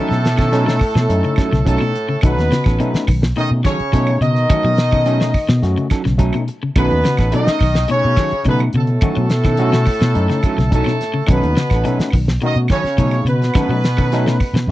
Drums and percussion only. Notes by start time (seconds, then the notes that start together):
0.11 snare, closed hi-hat
0.25 snare, closed hi-hat
0.37 kick, snare, closed hi-hat, claves
0.53 snare, closed hi-hat
0.68 snare, closed hi-hat
0.79 kick, open hi-hat, claves
0.96 snare, closed hi-hat
1.10 closed hi-hat
1.24 closed hi-hat
1.36 kick, snare, closed hi-hat, claves
1.53 snare, closed hi-hat
1.67 kick, closed hi-hat
1.78 closed hi-hat, claves
1.95 closed hi-hat
2.21 kick, closed hi-hat, claves
2.39 snare, closed hi-hat
2.52 snare, closed hi-hat
2.64 kick, snare, closed hi-hat, claves
2.80 closed hi-hat
2.94 snare, closed hi-hat
3.08 kick, open hi-hat, claves
3.23 snare
3.36 snare, closed hi-hat
3.65 kick, snare, closed hi-hat, claves
3.80 closed hi-hat
3.93 kick, closed hi-hat
4.07 closed hi-hat, claves
4.22 closed hi-hat
4.36 closed hi-hat
4.50 kick, closed hi-hat, claves
4.65 closed hi-hat
4.78 snare, closed hi-hat
4.92 kick, closed hi-hat, claves
5.06 closed hi-hat
5.20 snare, closed hi-hat
5.34 kick, open hi-hat, claves
5.48 snare, closed hi-hat
5.63 snare, closed hi-hat
5.77 closed hi-hat
5.90 kick, snare, closed hi-hat, claves
6.05 snare, closed hi-hat
6.19 kick, closed hi-hat
6.33 closed hi-hat, claves
6.48 closed hi-hat
6.76 kick, closed hi-hat, claves
6.91 closed hi-hat
7.04 snare, closed hi-hat
7.17 kick, snare, closed hi-hat, claves
7.32 closed hi-hat
7.46 snare, closed hi-hat
7.59 kick, open hi-hat, claves
7.75 snare
7.88 closed hi-hat
8.16 kick, snare, closed hi-hat, claves
8.31 closed hi-hat
8.44 kick, closed hi-hat
8.59 closed hi-hat, claves
8.73 closed hi-hat
8.87 closed hi-hat
9.01 kick, closed hi-hat, claves
9.15 closed hi-hat
9.30 snare, closed hi-hat
9.44 kick, snare, closed hi-hat, claves
9.57 closed hi-hat
9.72 snare, closed hi-hat
9.86 kick, open hi-hat, claves
10.01 snare, closed hi-hat
10.15 closed hi-hat
10.29 snare, closed hi-hat
10.43 kick, closed hi-hat, claves
10.58 snare, closed hi-hat
10.72 kick, closed hi-hat
10.84 snare, closed hi-hat, claves
11.01 snare, closed hi-hat
11.27 kick, closed hi-hat, claves
11.43 closed hi-hat
11.56 snare, closed hi-hat
11.70 kick, snare, closed hi-hat, claves
11.85 closed hi-hat
11.99 snare, closed hi-hat
12.10 kick, open hi-hat, claves
12.28 snare
12.42 closed hi-hat
12.68 kick, snare, closed hi-hat, claves
12.85 snare, closed hi-hat
12.98 kick, closed hi-hat
13.11 closed hi-hat, claves
13.27 closed hi-hat
13.42 snare, closed hi-hat
13.54 kick, snare, closed hi-hat, claves
13.70 closed hi-hat
13.84 snare, closed hi-hat
13.97 kick, closed hi-hat, claves
14.12 snare, closed hi-hat
14.26 snare, closed hi-hat
14.40 kick, open hi-hat, claves
14.55 snare, closed hi-hat